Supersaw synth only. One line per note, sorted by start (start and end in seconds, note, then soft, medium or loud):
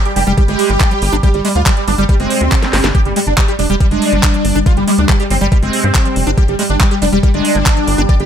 0.05 0.12 G4 medium
0.16 0.23 G4 loud
0.27 0.33 G4 medium
0.38 0.44 G4 medium
0.48 1.15 G4 loud
1.23 1.30 G4 loud
1.34 1.40 G3 medium
1.45 1.51 G3 medium
1.55 1.62 F4 loud
1.66 1.73 G3 medium
1.77 1.83 G3 medium
1.88 1.94 D4 loud
1.98 2.05 G3 medium
2.09 2.15 G3 medium
2.20 2.86 C4 loud
2.95 3.01 G4 loud
3.06 3.12 G3 medium
3.16 3.23 G3 medium
3.27 3.33 D4 loud
3.38 3.44 G3 medium
3.48 3.55 G3 medium
3.59 3.65 D4 loud
3.70 3.76 G3 medium
3.80 3.87 G3 medium
3.91 4.58 D4 loud
4.66 4.73 F4 loud
4.77 4.83 G3 medium
4.88 4.94 G3 medium
4.98 5.05 D4 loud
5.09 5.15 G3 medium
5.20 5.26 G3 medium
5.30 5.37 C4 loud
5.41 5.48 G3 medium
5.52 5.58 G3 medium
5.63 6.29 C4 loud
6.38 6.44 G4 loud
6.48 6.55 G3 medium
6.59 6.65 G3 medium
6.70 6.76 D4 medium
6.80 6.87 G3 medium
6.91 6.98 G3 medium
7.02 7.08 D4 loud
7.13 7.19 G3 medium
7.23 7.30 G3 medium
7.34 8.00 D4 loud
8.09 8.15 D5 loud
8.20 8.26 G4 medium